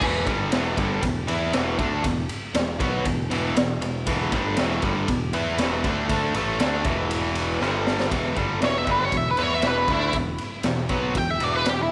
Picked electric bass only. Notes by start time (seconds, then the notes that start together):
0.01 E1
0.26 G1
0.53 E1
0.77 G1
1.02 E1
1.28 E2
1.53 E1
1.78 D2
2.04 E1
2.55 E1
2.80 B1
3.06 E1
3.31 E1
3.56 E1
3.82 E1
4.07 E1
4.33 G1
4.58 E1
4.83 G1
5.08 E1
5.33 E2
5.58 E1
5.84 D2
6.09 D2
6.35 A1
6.60 D2
6.85 E1
7.61 G1
8.11 E1
8.37 G1
8.62 E1
8.87 G1
9.12 E1
9.39 E2
9.63 E1
9.88 D2
10.13 E1
10.64 E1
10.90 B1
11.15 E1
11.41 E1
11.66 E1